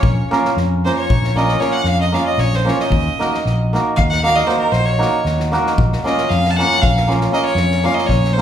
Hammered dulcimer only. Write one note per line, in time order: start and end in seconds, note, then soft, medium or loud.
0.31 0.46 A#3 medium
0.31 0.46 C#4 medium
0.31 0.46 F4 medium
0.31 0.47 A#4 medium
0.85 0.99 A#3 medium
0.85 1.00 C#4 soft
0.85 1.00 F4 medium
0.85 1.00 A#4 medium
1.36 1.50 A#3 medium
1.36 1.50 C#4 medium
1.36 1.51 F4 medium
1.36 1.51 A#4 medium
1.60 1.74 A#3 medium
1.60 1.74 C#4 medium
1.60 1.74 F4 medium
1.60 1.75 A#4 medium
2.12 2.27 A#3 medium
2.12 2.28 C#4 medium
2.12 2.28 F4 medium
2.12 2.28 A#4 medium
2.65 2.80 A#3 medium
2.65 2.80 C#4 medium
2.65 2.81 F4 medium
2.65 2.81 A#4 medium
3.19 3.33 A#3 medium
3.19 3.34 D#4 medium
3.19 3.34 F#4 medium
3.19 3.34 A#4 medium
3.73 3.87 A#3 medium
3.73 3.88 D#4 medium
3.73 3.87 F#4 medium
3.73 3.88 A#4 medium
4.23 4.37 A#3 medium
4.23 4.38 D#4 medium
4.23 4.38 F#4 medium
4.23 4.38 A#4 medium
4.47 4.61 A#3 medium
4.47 4.61 D#4 medium
4.47 4.61 F#4 medium
4.47 4.62 A#4 medium
4.99 5.13 A#3 medium
4.99 5.13 D#4 medium
4.99 5.14 F#4 medium
4.99 5.14 A#4 medium
5.52 5.66 A#3 medium
5.52 5.67 D#4 medium
5.52 5.67 F#4 medium
5.52 5.67 A#4 medium
6.04 6.19 A#3 medium
6.04 6.19 C#4 medium
6.04 6.19 F4 medium
6.04 6.20 A#4 medium
6.58 6.72 A#3 medium
6.58 6.73 C#4 medium
6.58 6.73 F4 medium
6.58 6.73 A#4 medium
7.07 7.22 A#3 medium
7.07 7.22 C#4 medium
7.07 7.23 F4 medium
7.07 7.23 A#4 medium
7.31 7.46 A#3 medium
7.31 7.46 C#4 soft
7.31 7.46 F4 medium
7.31 7.47 A#4 medium
7.83 7.98 A#3 medium
7.83 7.99 C#4 medium
7.83 7.99 F4 medium
7.83 7.99 A#4 medium
8.37 8.42 A#3 medium
8.37 8.42 C#4 soft
8.37 8.42 F4 medium